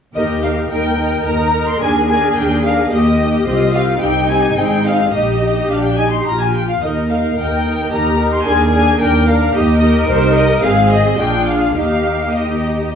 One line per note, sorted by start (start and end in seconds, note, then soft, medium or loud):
0.15 0.65 D#2 soft
0.15 0.41 D#4 soft
0.15 0.67 G4 soft
0.15 0.41 A#4 soft
0.15 0.41 D#5 soft
0.15 0.23 D#5 medium
0.43 0.70 D#4 soft
0.43 0.70 A#4 soft
0.43 0.71 F5 soft
0.43 0.51 F5 medium
0.71 1.20 D#2 soft
0.71 0.98 D#4 soft
0.71 0.97 A#4 soft
0.71 0.98 A#4 soft
0.71 1.25 G5 soft
0.71 1.26 G5 medium
0.98 1.25 D#4 soft
0.98 1.80 A#4 soft
0.98 1.25 A#4 soft
1.26 1.75 D#2 soft
1.26 1.54 D#4 soft
1.26 1.54 A#4 soft
1.26 1.68 A#5 medium
1.26 1.67 A#5 medium
1.55 1.82 D#4 soft
1.55 1.81 A#4 soft
1.68 1.82 C6 soft
1.68 1.82 C6 medium
1.81 2.31 D#2 soft
1.81 2.09 D4 soft
1.81 2.92 G#4 medium
1.81 2.09 A#4 soft
1.81 2.07 G#5 medium
1.81 1.90 G#5 medium
2.09 2.36 D4 soft
2.09 2.36 A#4 soft
2.09 2.17 G#5 soft
2.09 2.36 G#5 medium
2.37 2.86 D#2 soft
2.37 2.64 D4 soft
2.37 2.64 A#4 soft
2.37 2.65 G5 medium
2.37 2.64 G5 soft
2.65 2.92 D4 soft
2.65 2.92 A#4 soft
2.65 2.92 F5 medium
2.65 2.73 F5 medium
2.92 3.41 D#2 medium
2.92 3.19 A#3 soft
2.92 3.47 G4 soft
2.92 3.19 G4 soft
2.92 3.46 D#5 medium
2.92 3.45 D#5 medium
3.20 3.47 A#3 soft
3.20 3.46 G4 soft
3.46 3.95 C2 medium
3.46 3.73 C4 medium
3.46 4.01 F4 medium
3.46 3.73 G4 medium
3.46 3.74 D#5 medium
3.46 3.55 D#5 medium
3.74 4.01 C4 soft
3.74 4.00 G4 soft
3.74 4.02 F5 medium
3.74 3.82 F5 medium
4.01 4.51 C2 medium
4.01 4.28 C4 soft
4.01 5.13 D#4 medium
4.01 4.28 G4 soft
4.01 4.29 G5 medium
4.29 4.56 C4 soft
4.29 4.56 G4 soft
4.29 4.56 G#5 medium
4.29 4.57 G#5 medium
4.57 5.06 G#1 medium
4.57 4.84 C4 soft
4.57 4.84 G#4 soft
4.57 4.85 G5 medium
4.84 5.13 C4 soft
4.84 5.13 G#4 soft
4.84 5.13 F5 medium
5.13 5.63 A#1 soft
5.13 5.40 D#4 soft
5.13 6.51 G4 soft
5.13 5.40 G4 soft
5.13 5.68 D#5 medium
5.13 5.68 D#5 soft
5.41 5.69 D#4 soft
5.41 5.69 G4 soft
5.69 6.20 A#1 soft
5.69 5.96 D4 soft
5.69 5.83 F5 medium
5.69 5.84 F5 medium
5.84 5.98 G5 soft
5.84 5.98 G5 medium
5.97 6.26 D#4 soft
5.97 6.11 G#5 medium
5.97 6.04 G#5 soft
6.11 6.26 C6 medium
6.11 6.26 C6 soft
6.25 6.75 A#1 soft
6.25 6.82 F4 soft
6.25 6.39 A#5 medium
6.25 6.40 A#5 soft
6.41 6.46 G#5 soft
6.41 6.54 G#5 medium
6.54 6.59 G5 medium
6.54 6.68 G5 soft
6.69 6.74 F5 soft
6.69 6.82 F5 medium
6.82 7.31 D#2 soft
6.82 7.09 D#4 soft
6.82 7.08 A#4 soft
6.82 7.09 D#5 soft
6.82 6.91 D#5 medium
7.10 7.37 D#4 soft
7.10 7.37 A#4 soft
7.10 7.18 F5 soft
7.10 7.37 F5 soft
7.37 7.86 D#2 soft
7.37 7.65 D#4 soft
7.37 7.88 A#4 soft
7.37 7.65 A#4 soft
7.37 7.92 G5 medium
7.37 7.91 G5 medium
7.66 7.91 D#4 soft
7.66 7.91 A#4 soft
7.92 8.40 D#2 soft
7.92 8.18 D#4 soft
7.92 8.45 G4 soft
7.92 8.18 A#4 soft
7.92 8.33 A#5 medium
7.92 8.32 A#5 soft
8.19 8.46 D#4 soft
8.19 8.45 A#4 soft
8.33 8.38 C6 soft
8.33 8.47 C6 medium
8.46 8.95 D#2 soft
8.46 8.73 D4 soft
8.46 9.01 G#4 medium
8.46 8.72 A#4 soft
8.46 8.72 G#5 medium
8.46 8.55 G#5 medium
8.73 8.99 D4 soft
8.73 8.99 A#4 soft
8.73 9.00 G#5 medium
8.73 9.01 G#5 medium
9.00 9.49 D#2 medium
9.00 9.27 D4 soft
9.00 9.27 A#4 soft
9.00 9.54 A#4 medium
9.00 9.28 G5 medium
9.28 9.55 D4 soft
9.28 9.55 A#4 soft
9.28 9.36 F5 medium
9.28 9.55 F5 medium
9.55 10.03 D#2 medium
9.55 9.82 D#4 medium
9.55 9.83 G4 soft
9.55 9.82 G4 medium
9.55 10.09 D#5 medium
9.83 10.08 D#4 soft
9.83 10.08 G4 soft
9.83 10.63 A#4 medium
10.08 10.61 C2 medium
10.08 10.61 D#4 medium
10.08 10.61 G4 medium
10.08 10.36 C5 medium
10.36 10.63 D#5 medium
10.36 10.64 D#5 medium
10.63 11.20 G#1 medium
10.63 11.20 C4 medium
10.63 11.20 G#4 medium
10.63 11.19 G#4 medium
10.63 10.91 F5 medium
10.63 10.92 F5 medium
10.91 11.19 D#5 medium
10.91 11.20 D#5 medium
11.20 11.77 A#1 medium
11.20 11.77 D4 medium
11.20 11.78 F4 soft
11.20 11.76 G#4 soft
11.20 11.48 G5 medium
11.20 11.49 G5 medium
11.47 11.76 F5 medium
11.47 11.75 F5 soft
11.77 12.95 D#2 soft
11.77 12.34 D#4 soft
11.77 12.95 G4 soft
11.77 12.33 G4 soft
11.77 12.34 F5 medium
12.35 12.95 D#4 soft
12.35 12.95 G4 soft
12.35 12.93 D#5 soft
12.35 12.92 D#5 soft